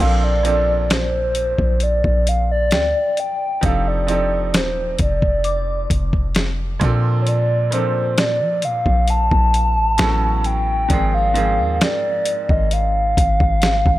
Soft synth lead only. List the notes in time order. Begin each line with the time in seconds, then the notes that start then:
0.01 F5
0.24 D5
0.92 C5
1.83 D5
2.29 F5
2.52 D5
3.20 G5
3.65 F5
3.88 D5
4.56 C5
5.02 D5
7.21 C#5
7.28 D5
7.74 C5
8.19 D5
8.65 F5
9.10 A5
10.46 G5
11.14 F5
11.82 D5
12.51 D#5
12.73 F5